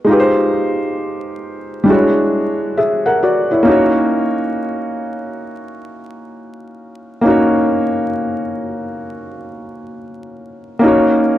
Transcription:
0.04 1.82 G#3 medium
0.04 1.83 D#4 medium
0.09 1.84 F4 medium
0.09 1.85 G4 medium
0.13 0.19 B4 medium
0.20 1.90 C5 medium
1.84 1.94 G3 medium
1.84 3.62 D4 medium
1.88 3.64 G#3 medium
1.88 2.76 E4 medium
1.88 2.77 F#4 medium
1.92 2.78 C#5 medium
2.77 3.04 G#4 medium
2.77 3.04 E5 medium
3.06 3.22 A#4 soft
3.06 3.21 F#5 medium
3.23 3.50 F#4 medium
3.23 3.49 D5 medium
3.51 3.94 E4 medium
3.51 3.70 C#5 medium
3.63 7.19 A#3 medium
3.63 7.20 C#4 medium
3.67 7.21 D#4 medium
3.67 7.22 F#4 medium
3.71 7.23 C#5 medium
7.21 10.77 A#3 medium
7.21 10.78 C#4 medium
7.26 10.79 D#4 medium
7.26 10.81 F#4 medium
7.30 10.82 C#5 medium
10.79 11.38 A#3 medium
10.79 11.38 C#4 medium
10.84 11.38 D#4 medium
10.84 11.38 F#4 medium
10.88 11.38 C#5 medium

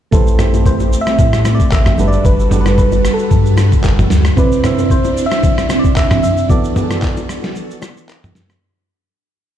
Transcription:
0.11 0.96 A1 loud
0.11 0.34 A3 medium
0.11 1.96 A3 medium
0.11 1.96 C4 medium
0.11 0.34 E4 medium
0.11 1.96 G4 medium
0.11 0.34 G4 medium
0.11 0.68 A4 loud
0.11 0.35 B4 medium
0.11 0.35 C5 medium
0.11 kick loud
0.11 low conga medium
0.11 shaker medium
0.27 shaker medium
0.38 1.24 A3 medium
0.38 1.24 E4 medium
0.38 1.25 G4 medium
0.38 1.25 A4 medium
0.38 1.25 C5 medium
0.38 cross-stick medium
0.38 mid tom medium
0.38 high bongo soft
0.38 shaker medium
0.54 high bongo soft
0.54 low bongo medium
0.54 shaker medium
0.66 1.01 C5 loud
0.66 kick medium
0.66 high bongo medium
0.66 shaker medium
0.80 low bongo medium
0.80 shaker medium
0.93 shaker medium
1.01 1.56 E5 loud
1.06 cross-stick medium
1.06 shaker soft
1.18 1.60 A2 medium
1.18 kick loud
1.18 low conga medium
1.18 shaker medium
1.33 cross-stick medium
1.33 shaker medium
1.45 cross-stick loud
1.45 low bongo medium
1.45 shaker medium
1.55 1.74 D5 loud
1.60 kick medium
1.60 shaker medium
1.71 1.93 A1 loud
1.71 2.09 E5 loud
1.71 kick medium
1.71 clap medium
1.71 high bongo medium
1.71 shaker medium
1.86 cross-stick medium
1.86 mid tom medium
1.86 shaker soft
1.97 2.19 G1 medium
1.97 2.41 G3 medium
1.97 4.35 G3 medium
1.97 2.42 D4 medium
1.97 4.35 F#4 medium
1.97 2.42 F#4 medium
1.97 4.35 A4 medium
1.97 2.42 A4 medium
1.97 4.35 B4 medium
1.97 2.43 B4 medium
1.97 low conga medium
1.97 shaker medium
2.08 2.27 D5 loud
2.12 shaker medium
2.25 3.08 G1 loud
2.25 2.60 B4 loud
2.25 kick loud
2.25 low conga medium
2.25 shaker medium
2.39 shaker medium
2.50 3.36 G3 medium
2.50 3.37 D4 medium
2.50 3.37 F#4 medium
2.50 3.37 A4 medium
2.50 3.38 D5 medium
2.50 mid tom medium
2.50 high bongo soft
2.50 shaker medium
2.61 2.77 B4 medium
2.66 cross-stick medium
2.66 high bongo soft
2.66 low bongo medium
2.66 shaker medium
2.78 3.15 B4 medium
2.78 kick medium
2.78 high bongo medium
2.78 shaker medium
2.92 low bongo medium
2.92 shaker medium
3.05 cross-stick medium
3.05 shaker medium
3.14 3.31 A4 medium
3.19 shaker soft
3.31 3.73 G2 loud
3.31 4.07 A4 medium
3.31 kick loud
3.31 low conga medium
3.31 shaker medium
3.46 shaker medium
3.57 cross-stick loud
3.57 low bongo medium
3.57 shaker medium
3.72 kick medium
3.72 shaker medium
3.84 4.05 G1 loud
3.84 kick medium
3.84 clap medium
3.84 high bongo medium
3.84 shaker medium
3.99 mid tom medium
3.99 shaker soft
4.10 4.32 D2 loud
4.10 snare medium
4.10 low conga medium
4.10 shaker medium
4.25 cross-stick medium
4.25 shaker medium
4.36 4.58 C3 medium
4.36 6.48 C3 medium
4.36 4.59 C4 medium
4.36 6.47 C4 medium
4.36 8.58 D4 medium
4.36 6.48 E4 medium
4.36 4.59 E4 medium
4.36 4.93 B4 loud
4.36 4.60 B4 medium
4.36 4.60 D5 medium
4.36 kick loud
4.36 low conga medium
4.36 shaker medium
4.52 shaker medium
4.63 5.49 C3 medium
4.63 5.49 C4 medium
4.63 5.49 E4 medium
4.63 5.50 C5 medium
4.63 5.50 E5 medium
4.63 cross-stick medium
4.63 mid tom medium
4.63 high bongo medium
4.63 shaker medium
4.78 high bongo soft
4.78 low bongo medium
4.78 shaker medium
4.90 5.26 C5 loud
4.90 kick medium
4.90 high bongo medium
4.90 shaker medium
5.04 low bongo medium
5.04 shaker medium
5.17 shaker medium
5.26 5.81 E5 loud
5.31 cross-stick medium
5.31 shaker medium
5.43 kick loud
5.43 low conga medium
5.43 shaker medium
5.58 cross-stick medium
5.58 shaker medium
5.69 cross-stick loud
5.69 low bongo medium
5.69 shaker medium
5.79 5.98 D5 loud
5.84 kick medium
5.84 shaker medium
5.96 6.23 E5 loud
5.96 kick medium
5.96 clap medium
5.96 high bongo medium
5.96 shaker medium
6.11 cross-stick medium
6.11 mid tom medium
6.11 shaker soft
6.23 6.51 E5 loud
6.23 low conga medium
6.23 shaker medium
6.37 shaker soft
6.48 6.71 E3 medium
6.48 8.60 E3 medium
6.48 6.71 B3 medium
6.48 8.60 F#4 medium
6.48 6.72 F#4 medium
6.48 8.60 A4 medium
6.48 6.72 A4 medium
6.48 8.09 D5 loud
6.48 6.72 D5 medium
6.48 kick loud
6.48 low conga medium
6.48 shaker medium
6.64 shaker medium
6.75 7.61 E3 medium
6.75 7.61 B3 medium
6.75 7.62 F#4 medium
6.75 6.84 G#4 medium
6.75 7.63 D5 medium
6.75 mid tom medium
6.75 high bongo medium
6.75 low bongo medium
6.75 shaker medium
6.84 7.65 A4 medium
6.91 cross-stick medium
6.91 high bongo soft
6.91 low bongo medium
6.91 shaker medium
7.02 kick medium
7.02 clap medium
7.02 high bongo medium
7.02 shaker medium
7.17 low bongo medium
7.17 shaker medium
7.29 cross-stick medium
7.29 shaker medium
7.44 snare medium
7.44 shaker soft
7.56 low conga medium
7.56 shaker medium
7.71 shaker medium
7.82 cross-stick loud
7.82 low bongo medium
7.82 shaker medium
7.97 shaker medium
8.09 clap medium
8.09 high bongo medium
8.09 shaker medium
8.24 mid tom medium
8.24 shaker soft
8.35 snare medium
8.35 low conga medium
8.35 shaker medium
8.50 cross-stick medium
8.50 shaker medium

